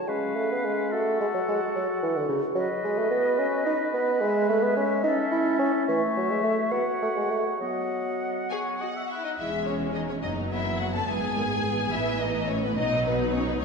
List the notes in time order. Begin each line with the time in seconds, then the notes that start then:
Already playing: C#5
0.07 G#3 C#4 B4 F5
0.36 A3
0.52 B3
0.65 G#3
0.92 A3 F#4 A4 F#5
1.21 G#3
1.34 F#3
1.48 G#3
1.76 F#3
2.03 E3
2.16 D3
2.29 C#3
2.55 F#3 B4 D#5
2.84 G#3
2.98 A3
3.10 B3
3.38 C#4
3.66 D#4
3.93 B3
4.21 G#3 E5
4.49 A3
4.63 B3
4.76 C#4
5.04 C#4 D#4 A4
5.31 E4
5.59 C#4
5.86 E3 A3 C#5 E5
6.17 F#3
6.30 G#3
6.43 A3
6.71 B3 F#4 C#5 F#5
7.02 A3
7.16 G#3
7.30 A3
7.60 F#3 B3 D#5 F#5
8.50 G#4 C#5 G#5
8.79 F#4 D#5 F#5
8.96 E5
9.09 E4 E5 F#5
9.24 D#4 D#5
9.37 E1 E2 E4 E5
9.42 G#3 C#4
9.66 C#4 C#5
9.94 D#4 D#5
10.09 C#4 C#5
10.22 F#1 F#2 F#3 D#4 D#5
10.26 B3
10.51 E4 E5
10.79 F#4 F#5
10.94 A4 A5
11.07 G#1 G#2 E3 B3 G#4 G#5
11.37 D#3
11.67 E3
11.92 A1 A2 E4 E5
12.20 D#4 D#5
12.48 C#4 C#5
12.63 B3 B4
12.76 B1 B2 F#3 D#4 D#5
13.05 B3 B4
13.34 C#4 C#5
13.47 B3 B4
13.60 F#3 C#4 C#5